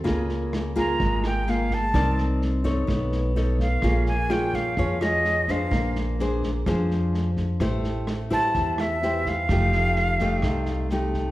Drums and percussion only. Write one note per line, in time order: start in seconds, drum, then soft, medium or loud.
0.05 kick medium
0.05 cross-stick medium
0.05 snare soft
0.29 snare soft
0.53 cross-stick medium
0.53 snare soft
0.76 kick soft
0.76 snare soft
1.00 kick medium
1.00 snare soft
1.24 cross-stick soft
1.24 snare soft
1.48 snare soft
1.70 kick soft
1.70 snare soft
1.94 kick medium
1.94 cross-stick medium
1.94 snare soft
2.18 snare soft
2.42 snare soft
2.65 kick soft
2.65 snare soft
2.88 kick medium
2.88 cross-stick soft
2.88 snare soft
3.12 snare soft
3.36 snare soft
3.59 kick soft
3.59 snare soft
3.82 kick soft
3.82 cross-stick medium
3.82 snare soft
4.06 snare soft
4.30 cross-stick medium
4.30 snare soft
4.53 kick soft
4.53 snare soft
4.77 kick medium
4.77 snare soft
5.01 cross-stick medium
5.01 snare soft
5.25 snare soft
5.48 kick soft
5.48 snare soft
5.72 kick medium
5.72 cross-stick soft
5.72 snare soft
5.95 snare soft
6.19 snare soft
6.43 kick soft
6.43 snare soft
6.66 kick medium
6.66 cross-stick medium
6.66 snare soft
6.91 snare soft
7.14 snare soft
7.37 kick soft
7.37 snare soft
7.60 kick soft
7.60 cross-stick medium
7.60 snare soft
7.84 snare soft
8.07 cross-stick medium
8.07 snare soft
8.31 kick soft
8.31 snare soft
8.54 kick soft
8.54 snare soft
8.78 cross-stick soft
8.78 snare soft
9.02 snare soft
9.26 kick soft
9.26 snare soft
9.49 kick medium
9.49 cross-stick soft
9.49 snare soft
9.72 snare soft
9.96 snare soft
10.19 kick soft
10.19 snare soft
10.42 kick soft
10.42 cross-stick medium
10.42 snare soft
10.65 snare soft
10.90 snare soft
11.14 kick soft
11.14 snare soft